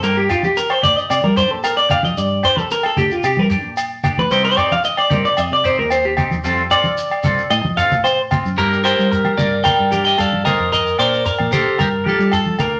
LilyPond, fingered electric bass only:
\new Staff \with { instrumentName = "Fingered electric bass" } { \clef bass \time 4/4 \key g \minor \tempo 4 = 112 g,8 r4 d,16 r16 c16 g8 bes,4 f16 | g,8 r4 d,16 r16 c16 g8 bes,4 d,16 | c,8 r4 g,16 r16 f,16 c8 ees,4 ees,16 | f,8 r4 c,16 r16 a,16 f8 a,4 fis,16 |
g,8. g8. g,8 r16 g,8. g,8. f,16~ | f,8 bes,8 r16 bes,8 r16 g,8. g8. d,8 | }